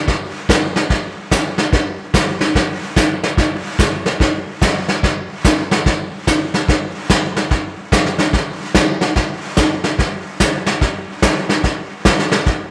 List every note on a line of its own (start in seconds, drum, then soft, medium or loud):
0.08 brush sweep medium
0.08 kick soft
0.08 snare soft
0.49 kick soft
0.49 snare medium
0.49 hi-hat pedal medium
0.76 snare soft
0.90 brush sweep soft
0.90 kick soft
0.90 snare soft
1.31 kick soft
1.31 snare medium
1.31 hi-hat pedal medium
1.58 snare soft
1.73 brush sweep soft
1.73 kick soft
1.73 snare soft
2.14 kick soft
2.14 snare medium
2.14 hi-hat pedal medium
2.41 snare soft
2.55 brush sweep soft
2.55 kick soft
2.55 snare soft
2.96 kick soft
2.96 snare medium
2.96 hi-hat pedal medium
3.23 snare soft
3.37 brush sweep soft
3.37 kick soft
3.37 snare soft
3.79 kick soft
3.79 snare medium
3.79 hi-hat pedal medium
4.06 snare soft
4.20 brush sweep soft
4.20 kick soft
4.20 snare soft
4.62 kick soft
4.62 snare medium
4.62 hi-hat pedal medium
4.88 snare soft
5.03 brush sweep soft
5.03 kick soft
5.03 snare soft
5.45 kick soft
5.45 snare medium
5.45 hi-hat pedal medium
5.71 snare medium
5.86 brush sweep soft
5.86 kick soft
5.86 snare soft
6.27 kick soft
6.27 snare medium
6.27 hi-hat pedal medium
6.54 snare soft
6.68 brush sweep soft
6.68 kick soft
6.68 snare soft
7.10 kick soft
7.10 snare medium
7.10 hi-hat pedal medium
7.36 snare soft
7.51 brush sweep medium
7.51 kick soft
7.51 snare soft
7.92 kick soft
7.92 snare medium
7.92 hi-hat pedal medium
8.06 snare soft
8.18 snare soft
8.33 brush sweep soft
8.33 kick soft
8.33 snare soft
8.75 kick soft
8.75 snare medium
8.75 hi-hat pedal medium
9.01 snare soft
9.16 brush sweep soft
9.16 kick soft
9.16 snare soft
9.57 kick soft
9.57 snare medium
9.57 hi-hat pedal medium
9.84 snare soft
9.99 brush sweep soft
9.99 kick soft
9.99 snare soft
10.40 kick soft
10.40 snare medium
10.40 hi-hat pedal medium
10.66 snare soft
10.81 brush sweep soft
10.81 kick soft
10.81 snare soft
11.22 kick soft
11.22 snare medium
11.22 hi-hat pedal medium
11.49 snare soft
11.64 brush sweep medium
11.64 kick soft
11.64 snare soft
12.05 kick soft
12.05 snare medium
12.05 hi-hat pedal medium
12.19 snare soft
12.31 snare soft
12.46 brush sweep soft
12.46 kick soft
12.46 snare soft